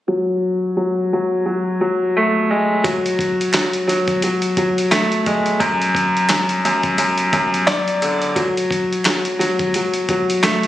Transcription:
0.08 upright piano F#3
0.77 upright piano F#3
1.13 upright piano F#3
1.46 upright piano F#3
1.81 upright piano F#3
2.17 upright piano A3
2.50 upright piano G#3
2.84 upright piano F#3, kick, closed hi-hat
3.06 closed hi-hat
3.19 kick, closed hi-hat
3.41 closed hi-hat
3.53 upright piano F#3, finger snap, snare, clap, closed hi-hat
3.73 closed hi-hat
3.87 upright piano F#3, snare, closed hi-hat
4.08 kick, closed hi-hat
4.22 upright piano F#3, closed hi-hat
4.42 closed hi-hat
4.57 upright piano F#3, kick, closed hi-hat
4.78 closed hi-hat
4.91 upright piano A3, finger snap, snare, clap, closed hi-hat
5.12 closed hi-hat
5.26 upright piano G#3, kick, closed hi-hat
5.46 closed hi-hat
5.60 upright piano F#2, kick, closed hi-hat
5.82 closed hi-hat
5.95 kick, closed hi-hat
6.17 closed hi-hat
6.29 upright piano F#2, finger snap, snare, clap, closed hi-hat
6.49 closed hi-hat
6.65 upright piano F#2, closed hi-hat
6.83 kick, closed hi-hat
6.98 upright piano F#2, closed hi-hat
7.18 closed hi-hat
7.33 upright piano F#2, kick, closed hi-hat
7.54 closed hi-hat
7.67 upright piano D5, finger snap, snare, clap, closed hi-hat
7.88 closed hi-hat
8.02 upright piano D3, closed hi-hat
8.22 closed hi-hat
8.36 upright piano F#3, kick, closed hi-hat
8.57 closed hi-hat
8.71 kick, closed hi-hat
8.93 closed hi-hat
9.04 upright piano F#3, finger snap, snare, clap, closed hi-hat
9.25 closed hi-hat
9.39 upright piano F#3, snare, closed hi-hat
9.59 kick, closed hi-hat
9.74 upright piano F#3, closed hi-hat
9.94 closed hi-hat
10.09 upright piano F#3, kick, closed hi-hat
10.30 closed hi-hat
10.43 upright piano A3, finger snap, snare, clap, closed hi-hat
10.63 closed hi-hat

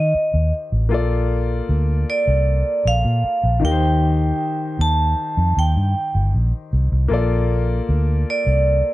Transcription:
Already playing: fingered electric bass D#3, grand piano D#3 D#4 G4 C5, vibraphone D#5
0.15 muted fingered electric bass stroke
0.34 fingered electric bass D#2
0.72 fingered electric bass A1
0.89 fingered electric bass A#1, grand piano A#3 F4 A4
0.94 grand piano D5
1.69 fingered electric bass D2
2.10 vibraphone D5
2.27 fingered electric bass C2
2.85 fingered electric bass A#1, vibraphone F5
3.05 fingered electric bass A#2
3.24 muted fingered electric bass stroke
3.44 fingered electric bass A#1
3.60 fingered electric bass D#2, grand piano D#3 D#4 G4
3.65 grand piano A#4, vibraphone G5
3.71 grand piano C5
4.79 fingered electric bass D#2, vibraphone A5
5.37 fingered electric bass F2
5.57 fingered electric bass D#2, vibraphone G5
5.76 fingered electric bass G2
6.15 fingered electric bass G1
6.34 fingered electric bass A#1
6.73 fingered electric bass C2
6.92 fingered electric bass C2
7.08 fingered electric bass A#1, grand piano A#3 F4 A4
7.14 grand piano D5
7.89 fingered electric bass D2
8.30 vibraphone D5
8.47 fingered electric bass C2

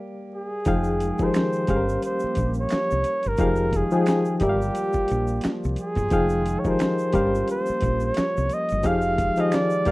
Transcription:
Already playing: reed electric piano G3 G4 A#4 D5 F5, clean electric guitar A#3 G4
0.35 muted trumpet G#4
0.65 fretless electric bass F1, analog synth pad D#3 G#3 G5, reed electric piano F3 D#4 G#4 F5 G5, kick, closed hi-hat, shaker
0.84 shaker
1.00 closed hi-hat, shaker
1.18 reed electric piano F3 D#4 G4 G#4 A#4, kick, shaker
1.23 muted trumpet C5
1.34 finger snap, snare, clap, closed hi-hat, shaker
1.53 shaker
1.67 fretless electric bass G1, analog synth pad F3 A#3 G4, reed electric piano G3 C#4 G4 G#4 F5, kick, closed hi-hat, shaker
1.76 reed electric piano A#4
1.89 shaker
2.02 muted trumpet C5, closed hi-hat, shaker
2.20 shaker
2.24 muted fretless electric bass stroke
2.35 fretless electric bass A#1, kick, closed hi-hat, shaker
2.54 shaker
2.60 muted trumpet C#5
2.69 finger snap, muted fretless electric bass stroke, snare, clap, closed hi-hat, shaker
2.91 fretless electric bass C2, shaker
3.04 closed hi-hat, shaker
3.23 fretless electric bass G1, closed hi-hat, shaker
3.28 muted trumpet A#4
3.37 fretless electric bass F1, analog synth pad D#3 G#3 F4, reed electric piano F3 D#4 G4 G#4 F5, kick, closed hi-hat, shaker
3.56 shaker
3.73 muted trumpet G#4, kick, closed hi-hat, shaker
3.91 reed electric piano F3 D#4 G#4 G5 G#5, shaker
4.06 finger snap, snare, clap, closed hi-hat, shaker
4.25 shaker
4.37 analog synth pad F3 A#3, reed electric piano G3 G4, muted trumpet G#4, kick, closed hi-hat, shaker
4.42 fretless electric bass G1, muted trumpet G4, reed electric piano A#4 D5 E5
4.49 reed electric piano F5
4.62 shaker
4.75 closed hi-hat, shaker
4.93 muted fretless electric bass stroke, kick, shaker
5.08 fretless electric bass A#1, closed hi-hat, shaker
5.27 shaker
5.41 finger snap, snare, clap, closed hi-hat, shaker
5.46 muted fretless electric bass stroke
5.64 fretless electric bass C2, shaker
5.76 closed hi-hat, shaker
5.81 muted trumpet G#4
5.95 fretless electric bass G1, kick, closed hi-hat, shaker
6.10 fretless electric bass F1, analog synth pad D#3 G#3, reed electric piano F3 D#4 G#4 F5 G5, kick, closed hi-hat, shaker
6.29 shaker
6.46 closed hi-hat, shaker
6.59 muted trumpet C#5
6.64 reed electric piano F3 D#4 G4 G#4 A#4, kick, shaker
6.69 muted trumpet C5
6.79 finger snap, snare, clap, closed hi-hat, shaker
6.99 shaker
7.13 fretless electric bass G1, analog synth pad F3 A#3, reed electric piano G3 C#4 G4 A#4 F5, kick, closed hi-hat, shaker
7.35 shaker
7.48 muted trumpet C5, closed hi-hat, shaker
7.66 muted fretless electric bass stroke, shaker
7.81 fretless electric bass A#1, kick, closed hi-hat, shaker
8.00 shaker
8.05 muted trumpet C#5
8.14 finger snap, muted fretless electric bass stroke, snare, clap, closed hi-hat, shaker
8.37 fretless electric bass C2, shaker
8.49 closed hi-hat, shaker
8.54 muted trumpet D#5
8.69 fretless electric bass G1, closed hi-hat, shaker
8.83 fretless electric bass F1, analog synth pad D#3 G#3, reed electric piano F3 D#4 G4 G#4 F5, kick, closed hi-hat, shaker
8.87 muted trumpet F5
9.02 shaker
9.18 kick, closed hi-hat, shaker
9.36 reed electric piano F3 D#4 G4 G#4 F5, closed hi-hat, shaker
9.40 muted trumpet D#5
9.52 muted trumpet D5, finger snap, snare, clap, closed hi-hat, shaker
9.70 shaker
9.85 fretless electric bass G1, analog synth pad F3 A#3 F4, reed electric piano G3 G4 A#4 D5 F5, kick, closed hi-hat, shaker

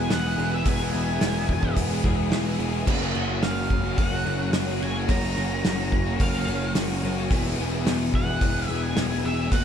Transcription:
Already playing: overdriven electric guitar E2 E3 G#3 B3 E4 G#4, twelve-string acoustic guitar B3, string machine B4 E5 G#5 D#6
0.00 lead electric guitar G#5
0.10 picked electric bass E1, overdriven electric guitar E2 B2 E3 G#3 B3 E4, lead electric guitar F#5, snare, open hi-hat
0.15 overdriven electric guitar G#4
0.25 overdriven electric guitar E3 G#3 B3 E4 G#4
0.38 picked electric bass E1, overdriven electric guitar E3 G#3 B3 E4 G#4
0.52 overdriven electric guitar E3 G#3 B3 E4 G#4, lead electric guitar E5
0.65 picked electric bass E1, overdriven electric guitar E2 B2 E3 G#3 B3 E4 G#4, lead electric guitar G#5, kick, open hi-hat
0.79 overdriven electric guitar B3 E4 G#4
0.93 picked electric bass E1, overdriven electric guitar E3 G#3 B3 E4 G#4
1.21 picked electric bass E1, overdriven electric guitar E2 B2 E3 G#3 B3 E4 G#4, snare, open hi-hat
1.34 overdriven electric guitar E3 G#3 B3 G#4
1.49 muted overdriven electric guitar stroke, kick
1.62 overdriven electric guitar E3 G#3 B3 E4 G#4, kick
1.75 picked electric bass E1, overdriven electric guitar E3 G#3 B3 G#4, kick, open hi-hat
1.89 overdriven electric guitar E3 G#3 B3 E4 G#4
2.03 picked electric bass E1, overdriven electric guitar E3 B3 E4 G#4, kick
2.31 picked electric bass E1, overdriven electric guitar E2 B2 E3 G#3 B3 E4 G#4, snare, open hi-hat
2.45 overdriven electric guitar E3 G#3 B3 E4 G#4
2.58 picked electric bass E1, overdriven electric guitar E3 G#3 B3 E4 G#4
2.72 overdriven electric guitar G#3 B3 E4 G#4
2.76 overdriven electric guitar E3
2.85 picked electric bass F#1, overdriven electric guitar F#2 C#3 F#3 A#3 C#4 F#4, string machine F#4 A#4 C#5 C#6, kick, crash
3.00 overdriven electric guitar A#3 C#4 F#4
3.14 picked electric bass F#1, overdriven electric guitar F#3 A#3 C#4 F#4
3.42 picked electric bass F#1, overdriven electric guitar F#2 C#3 F#3 A#3 C#4 F#4, lead electric guitar F5, snare, open hi-hat
3.56 overdriven electric guitar F#3 A#3 C#4 F#4
3.70 twelve-string acoustic guitar A#3, muted overdriven electric guitar stroke, kick
3.84 overdriven electric guitar F#3 A#3 C#4 F#4
3.98 picked electric bass F#1, overdriven electric guitar F#3 A#3 C#4 F#4, lead electric guitar F#5, kick, open hi-hat
4.11 overdriven electric guitar F#3 A#3 C#4 F#4
4.25 picked electric bass F#1, overdriven electric guitar F#3 A#3 C#4 F#4
4.53 picked electric bass F#1, overdriven electric guitar F#2 C#3 F#3 A#3 C#4, snare, open hi-hat
4.57 overdriven electric guitar F#4
4.67 overdriven electric guitar A#3 C#4 F#4
4.71 overdriven electric guitar F#3
4.80 picked electric bass F#1, overdriven electric guitar F#3 A#3 C#4 F#4, lead electric guitar G#5
4.95 overdriven electric guitar F#3 A#3 C#4 F#4
5.08 picked electric bass F#1, overdriven electric guitar F#2 C#3 F#3 A#3 C#4 F#4, lead electric guitar A#5, kick, open hi-hat
5.23 overdriven electric guitar A#3 C#4 F#4
5.35 picked electric bass F#1, overdriven electric guitar F#3 A#3 C#4
5.39 overdriven electric guitar F#4
5.63 picked electric bass F#1, overdriven electric guitar F#2 C#3 F#3 A#3 C#4, snare, open hi-hat
5.67 overdriven electric guitar F#4
5.78 overdriven electric guitar F#3 A#3 C#4 F#4
5.92 twelve-string acoustic guitar A#3, muted overdriven electric guitar stroke, kick
6.05 overdriven electric guitar F#3 A#3 C#4 F#4
6.18 picked electric bass F#1, overdriven electric guitar F#3 A#3 C#4 F#4, lead electric guitar F5, kick, open hi-hat
6.33 overdriven electric guitar F#3 A#3 C#4 F#4
6.48 picked electric bass F#1, overdriven electric guitar F#3 A#3 C#4 F#4
6.74 picked electric bass F#1, overdriven electric guitar F#2 C#3 F#3 A#3 C#4 F#4, snare, open hi-hat
6.88 overdriven electric guitar F#3 A#3 C#4 F#4
7.02 picked electric bass F#1, overdriven electric guitar F#3 A#3 C#4 F#4
7.16 overdriven electric guitar F#3 A#3 C#4 F#4
7.29 picked electric bass E1, overdriven electric guitar E2 B2 E3 G#3 B3 E4 G#4, string machine B4 E5 G#5 D#6, kick, open hi-hat
7.46 overdriven electric guitar B3 E4 G#4
7.57 picked electric bass E1, overdriven electric guitar E3 G#3 B3 G#4
7.61 overdriven electric guitar E4
7.85 picked electric bass E1, overdriven electric guitar E2 B2 E3 G#3 B3 E4 G#4, snare, open hi-hat
7.98 overdriven electric guitar G#3 B3 G#4
8.02 overdriven electric guitar E3
8.14 lead electric guitar F#5, muted overdriven electric guitar stroke, kick
8.27 overdriven electric guitar E3 G#3 B3 E4 G#4
8.40 picked electric bass E1, overdriven electric guitar E3 G#3 B3, kick, open hi-hat
8.44 overdriven electric guitar G#4
8.54 overdriven electric guitar E3 G#3 B3 E4 G#4
8.68 picked electric bass E1, overdriven electric guitar E3 B3 E4 G#4, lead electric guitar E5
8.83 lead electric guitar G#5
8.94 picked electric bass E1, overdriven electric guitar E2 B2 E3 G#3 B3 G#4, snare, open hi-hat
8.99 overdriven electric guitar E4
9.09 overdriven electric guitar E3 G#3 B3 E4 G#4
9.23 picked electric bass E1, overdriven electric guitar E3 G#3 B3 E4 G#4, lead electric guitar E5
9.37 overdriven electric guitar E3 G#3 B3 E4 G#4
9.51 picked electric bass F#1, overdriven electric guitar F#2 C#3 F#3 A#3 C#4 F#4, string machine A#4 C#5 F#5 C#6, lead electric guitar F#5, kick, open hi-hat

